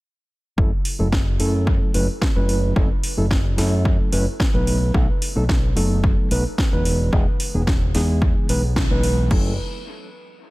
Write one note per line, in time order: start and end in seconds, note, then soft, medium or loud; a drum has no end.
0.57 0.70 F#1 medium
0.57 0.69 F#3 medium
0.57 0.69 A3 medium
0.57 0.70 C#4 medium
0.57 0.70 E4 medium
0.57 0.70 A4 medium
0.57 kick loud
0.85 open hi-hat medium
0.99 1.37 F#1 medium
0.99 1.06 F#3 medium
0.99 1.06 A3 medium
0.99 1.06 C#4 medium
0.99 1.06 E4 medium
0.99 1.06 A4 medium
1.12 kick medium
1.12 snare loud
1.39 1.78 F#2 medium
1.39 1.91 F#3 medium
1.39 1.91 A3 medium
1.39 1.91 C#4 medium
1.39 1.91 E4 medium
1.39 1.92 A4 medium
1.39 open hi-hat medium
1.67 kick loud
1.94 2.06 F#1 medium
1.94 2.06 F#3 medium
1.94 2.06 A3 medium
1.94 2.06 C#4 medium
1.94 2.06 E4 medium
1.94 2.06 B4 medium
1.94 open hi-hat medium
2.22 kick medium
2.22 snare loud
2.35 2.73 F#1 medium
2.35 2.73 F#3 medium
2.35 2.73 A3 medium
2.35 2.73 C#4 medium
2.35 2.73 E4 medium
2.35 2.73 B4 medium
2.49 open hi-hat medium
2.76 2.88 F#1 medium
2.76 2.88 F#3 medium
2.76 2.88 A3 medium
2.76 2.88 C#4 medium
2.76 2.88 E4 medium
2.76 2.88 A4 medium
2.76 kick loud
3.04 open hi-hat loud
3.17 3.55 F#1 medium
3.17 3.24 F#3 medium
3.17 3.24 A3 medium
3.17 3.24 C#4 medium
3.17 3.25 E4 medium
3.17 3.25 A4 medium
3.31 kick loud
3.31 snare loud
3.57 3.96 F#2 medium
3.57 4.09 F#3 medium
3.57 4.09 A3 medium
3.57 4.09 C#4 medium
3.57 4.09 E4 medium
3.57 4.10 A4 medium
3.57 snare medium
3.57 open hi-hat medium
3.85 kick loud
4.00 muted fingered electric bass stroke soft
4.12 4.25 F#1 medium
4.12 4.24 F#3 medium
4.12 4.24 A3 medium
4.12 4.24 C#4 medium
4.12 4.24 E4 medium
4.12 4.24 B4 medium
4.12 open hi-hat loud
4.40 kick loud
4.40 snare loud
4.53 4.91 B1 medium
4.53 4.91 F#3 medium
4.53 4.91 A3 medium
4.53 4.91 B3 medium
4.53 4.91 D#4 medium
4.53 4.92 B4 medium
4.67 open hi-hat medium
4.94 5.06 B1 medium
4.94 5.06 F#3 medium
4.94 5.06 A3 medium
4.94 5.06 B3 medium
4.94 5.06 D#4 medium
4.94 5.06 A4 medium
4.94 kick loud
5.22 open hi-hat loud
5.35 5.73 B1 medium
5.35 5.42 F#3 medium
5.35 5.42 A3 medium
5.35 5.43 B3 medium
5.35 5.43 D#4 medium
5.35 5.43 A4 medium
5.49 kick loud
5.49 snare loud
5.76 6.14 F#1 medium
5.76 6.28 F#3 medium
5.76 6.28 A3 medium
5.76 6.28 B3 medium
5.76 6.28 D#4 medium
5.76 6.28 A4 medium
5.76 open hi-hat medium
6.04 kick loud
6.31 6.43 B1 medium
6.31 6.42 F#3 medium
6.31 6.42 A3 medium
6.31 6.43 B3 medium
6.31 6.43 D#4 medium
6.31 6.43 B4 medium
6.31 open hi-hat loud
6.58 kick loud
6.58 snare loud
6.72 7.10 E1 medium
6.72 7.09 E3 medium
6.72 7.10 G#3 medium
6.72 7.10 B3 medium
6.72 7.10 D#4 medium
6.72 7.10 B4 medium
6.85 open hi-hat medium
7.13 7.25 E1 loud
7.13 7.24 E3 medium
7.13 7.24 G#3 medium
7.13 7.24 B3 medium
7.13 7.25 D#4 medium
7.13 7.25 G#4 medium
7.13 kick loud
7.40 open hi-hat loud
7.54 7.91 E1 medium
7.54 7.61 E3 medium
7.54 7.61 G#3 medium
7.54 7.61 B3 medium
7.54 7.61 D#4 medium
7.54 7.61 G#4 medium
7.67 kick loud
7.67 snare loud
7.94 8.33 E2 medium
7.94 8.46 E3 medium
7.94 8.46 G#3 medium
7.94 8.46 B3 medium
7.94 8.46 D#4 medium
7.94 8.46 G#4 medium
7.94 snare medium
7.94 open hi-hat medium
8.22 kick loud
8.36 muted fingered electric bass stroke soft
8.49 8.87 B1 medium
8.49 8.60 E3 medium
8.49 8.61 G#3 medium
8.49 8.61 B3 medium
8.49 8.61 D#4 medium
8.49 8.61 B4 medium
8.49 open hi-hat loud
8.76 kick loud
8.76 snare loud
8.90 9.28 B1 medium
8.90 9.28 E3 medium
8.90 9.28 G#3 medium
8.90 9.28 B3 medium
8.90 9.28 D#4 medium
8.90 9.28 B4 medium
9.03 open hi-hat medium
9.30 9.56 F#1 medium
9.30 9.51 F#3 medium
9.30 9.51 A3 medium
9.30 9.52 C#4 medium
9.30 9.52 E4 medium
9.30 9.52 A4 medium
9.30 kick loud
9.30 crash medium